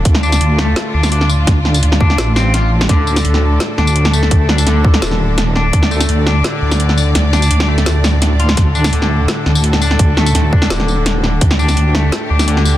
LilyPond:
<<
  \new Staff \with { instrumentName = "String section" } { \time 4/4 \key d \phrygian \tempo 4 = 169 << { f'1~ | f'1 | a'1~ | a'1 |
d''1~ | d''1 | a'1~ | a'1 |
g'1 | } \\ { <a, d d'>1~ | <a, d d'>1~ | <a, d d'>1~ | <a, d d'>1~ |
<a, d d'>1~ | <a, d d'>1~ | <a, d d'>1~ | <a, d d'>1~ |
<a, d d'>1 | } >> }
  \new Staff \with { instrumentName = "Clean electric guitar" } { \time 4/4 \key d \phrygian r8 d'4 a4 d'8 d'8 r8 | r4. d'4 c'8 f'8 r8 | d2 r8 d'4 a8~ | a8 d'8 d2 r8 d'8~ |
d'8 a4 d'8 d2 | r8 d'4 a4 r4 f'8 | r8 d'8 d2 r8 d'8~ | d'8 a4 d'8 d2 |
r8 d'4 a4 d'8 d4 | }
  \new Staff \with { instrumentName = "Wobble bass" } { \clef bass \time 4/4 \key d \phrygian d,4 d,4 r8 d,4. | d,4 d,4 a,,2 | d,4 d,4 r8 d,4. | d,4 d,4 ees,,2 |
d,4 d,4 r8 d,4. | d,4 d,4 d,2 | d,4 d,4 r8 d,4. | d,4 d,4 ees,,2 |
d,4 d,4 r8 d,4. | }
  \new DrumStaff \with { instrumentName = "Drums" } \drummode { \time 4/4 <hh bd>16 sn16 tamb16 <hh sn tamb>16 hh8 sn8 <hh sn>8. <sn tamb>16 hh16 sn16 tamb8 | <hh bd sn>8 sn16 <hh tamb>16 hh16 sn16 bd16 sn16 <hh sn tamb>8 <sn tamb>8 <hh sn>8. sn16 | <hh bd sn>8 tamb16 <hh sn tamb>16 hh16 sn8. <hh sn>8 sn16 tamb16 hh16 sn16 tamb16 sn16 | <hh bd>8 sn16 <hh tamb>16 <hh sn>8 bd16 sn16 <hh sn tamb>16 sn8. <hh sn>8 sn8 |
<hh bd>16 sn16 tamb16 <hh sn tamb>16 hh8 sn8 <hh sn>8. <sn tamb>16 hh16 sn16 tamb8 | <hh sn>8 <sn tamb>16 <hh tamb>16 hh16 sn8 <hh sn>16 <hh sn tamb>8 <sn tamb>8 <hh sn>8 hh16 sn16 | <hh bd sn>8 tamb16 <hh sn tamb>16 hh16 sn8. <hh sn>8 sn16 tamb16 hh16 sn16 tamb16 sn16 | <hh bd>8 sn16 <hh tamb>16 <hh sn>8 bd16 sn16 <hh sn tamb>16 sn16 tamb8 <hh sn>8 sn8 |
<hh bd>16 sn16 tamb16 <sn tamb>16 hh8 sn8 <hh sn>8. <sn tamb>16 hh16 sn16 tamb8 | }
>>